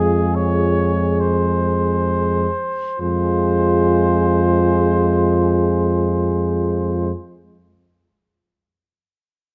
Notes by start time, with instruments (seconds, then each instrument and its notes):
Already playing: tuba F2, trombone G#3, euphonium F4, cornet G#4, french horn section G#4
0.36 cornet C#5
1.20 cornet C5
3.00 tuba F2, trombone G#3, euphonium F4, french horn section G#4, cornet C5